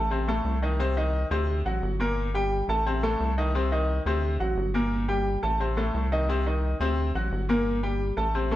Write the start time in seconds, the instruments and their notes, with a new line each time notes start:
Already playing: analog synth bass A1
0.11 upright piano C3 C4 C5
0.28 upright piano A2 A3 A4
0.44 analog synth bass C2
0.62 upright piano D#3 D#4 D#5
0.79 upright piano C3 C4 C5
0.97 upright piano D#3 D#4 D#5
1.31 analog synth bass D2, upright piano C3 C4 C5
1.65 analog synth bass A1, upright piano F#3 F#4 F#5
1.82 analog synth bass G1
2.00 upright piano A#2 A#3 A#4
2.34 upright piano G3 G4 G5
2.68 analog synth bass A1, upright piano A3 A4 A5
2.86 upright piano C3 C4 C5
3.03 upright piano A2 A3 A4
3.20 analog synth bass C2
3.38 upright piano D#3 D#4 D#5
3.55 upright piano C3 C4 C5
3.72 upright piano D#3 D#4 D#5
4.06 analog synth bass D2, upright piano C3 C4 C5
4.40 analog synth bass A1, upright piano F#3 F#4 F#5
4.57 analog synth bass G1
4.74 upright piano A#2 A#3 A#4
5.08 upright piano G3 G4 G5
5.43 analog synth bass A1, upright piano A3 A4 A5
5.60 upright piano C3 C4 C5
5.77 upright piano A2 A3 A4
5.94 analog synth bass C2
6.12 upright piano D#3 D#4 D#5
6.29 upright piano C3 C4 C5
6.46 upright piano D#3 D#4 D#5
6.80 analog synth bass D2, upright piano C3 C4 C5
7.15 analog synth bass A1, upright piano F#3 F#4 F#5
7.32 analog synth bass G1
7.49 upright piano A#2 A#3 A#4
7.83 upright piano G3 G4 G5
8.17 analog synth bass A1, upright piano A3 A4 A5
8.35 upright piano C3 C4 C5
8.51 upright piano A2 A3 A4